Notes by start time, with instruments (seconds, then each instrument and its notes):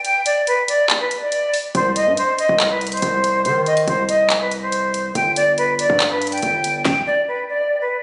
0.05 flute G5, closed hi-hat
0.26 flute D5, closed hi-hat
0.47 flute B4, closed hi-hat
0.68 flute D5, closed hi-hat
0.90 clap, closed hi-hat
1.00 flute B4
1.11 closed hi-hat
1.22 flute D5
1.32 closed hi-hat
1.54 open hi-hat
1.75 808-style bass C2, flute C5, closed hi-hat
1.96 flute D#5, closed hi-hat
2.07 808-style bass G2
2.17 flute C5, closed hi-hat
2.38 flute D#5, closed hi-hat
2.49 808-style bass C2
2.60 clap, closed hi-hat
2.71 flute B4
2.81 closed hi-hat
2.87 closed hi-hat
2.92 flute C5, closed hi-hat
2.97 closed hi-hat
3.02 808-style bass C2, closed hi-hat
3.24 closed hi-hat
3.45 808-style bass D#3, flute C5, closed hi-hat
3.66 flute D#5, closed hi-hat
3.77 closed hi-hat
3.88 808-style bass C2, flute C5, closed hi-hat
4.09 flute D#5, closed hi-hat
4.30 clap, closed hi-hat
4.41 flute B4
4.51 closed hi-hat
4.62 flute C5
4.72 closed hi-hat
4.94 closed hi-hat
5.15 808-style bass G1, flute G5, closed hi-hat
5.36 flute D5, closed hi-hat
5.58 flute B4, closed hi-hat
5.79 flute D5, closed hi-hat
5.90 808-style bass G2
6.00 clap, closed hi-hat
6.11 flute B4
6.22 closed hi-hat
6.27 closed hi-hat
6.32 flute G5, closed hi-hat
6.38 closed hi-hat
6.42 808-style bass G1, closed hi-hat
6.64 closed hi-hat
6.85 flute G5, kick, snare
7.07 flute D5
7.28 flute B4
7.49 flute D5
7.81 flute B4